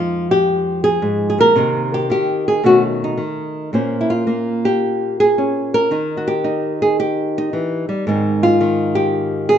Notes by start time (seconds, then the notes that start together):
Already playing: F2 F3 G#3 D#4 F4
0.31 G4
0.84 G#4
1.02 G#2
1.30 G#4
1.38 A#2 A#4
1.56 C3 D#3 A#3 D#4
1.94 G4
2.10 D#3 G4
2.48 G#4
2.64 B2 D#3 A3 C#4 F#4
3.04 D#4
3.17 D#3
3.73 A#2 A#3 C#4 C5
4.01 E4
4.10 F4
4.27 A#3
4.65 G4
5.20 G#4
5.38 C#4
5.74 A#4
5.91 D#3 D#4
6.17 F#4
6.28 G4
6.44 D#4
6.82 G#4
7.00 G4
7.38 D#4
7.53 E3
7.89 G3
8.07 G#2 D#3 C4 D#4
8.43 F4
8.61 D#3
8.95 G4
9.49 G#4